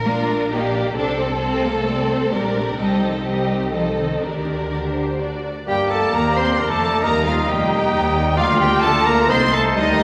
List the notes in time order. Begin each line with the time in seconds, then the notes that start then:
Already playing: A#4
0.04 A#1 A#3 D4 F4 A#4 D5
0.28 A3
0.51 A#3 D#4 G4 D5
0.73 D4
0.94 C2 C4 D4 A4 C5
1.19 C4
1.41 A3 C4 A4 C5
1.65 A#3
1.87 C4 D5
2.10 C5
2.32 A#1 G3 D4 G4 A#4 D5
2.56 A3
2.78 C2 G3 C4 D#4 G4 A4 D#5
3.02 F3
3.23 G3 C4 D#4 G4 D#5
3.72 F3 C4 D#4 A4 D#5
3.97 D#3
4.21 D2 D#3 D4 G4 A#4 D5
4.70 D3 D4 G4 D5
4.95 C5
5.19 D4 F#4 D5
5.67 G1 G2 G3 A#3 G4 D5 G5 A#5
5.90 A3 A4 A5
6.14 D#2 A#3 G4 A#4 A#5
6.36 C4 C5 C6
6.57 F1 F2 A#3 D4 A#4 A#5
6.70 A3 A4 A5
7.03 D#2 G3 A#3 D#4 A#4 D#5 A#5
7.25 F3 F4 F5
7.46 F1 F2 G3 A#3 D#4 G4 G5
7.92 D#2 G4
8.15 D#4
8.36 D2 F3 A#3 F4 D5 F5 A#5
8.59 G3 G4 G5
8.81 D2 D3 A3 F4 A4 A5
9.05 A#3 A#4 A#5
9.28 C2 C4 D#4 C5 D#5 C6 A6
9.51 A3 A4 A5
9.76 D2 D#3 G3 D4 D#4 G4 A#4 D#5 G6